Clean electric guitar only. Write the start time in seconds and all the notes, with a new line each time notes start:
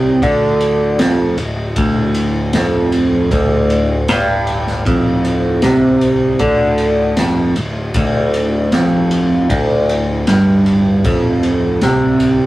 Already playing: C3
0.23 D3
0.99 F2
1.39 D2
1.77 D2
2.55 F2
3.32 D2
4.09 G2
4.86 F2
5.63 C3
6.40 D3
7.18 F2
7.57 D2
7.96 D2
8.73 F2
9.50 D2
10.28 G2
11.06 F2
11.83 C3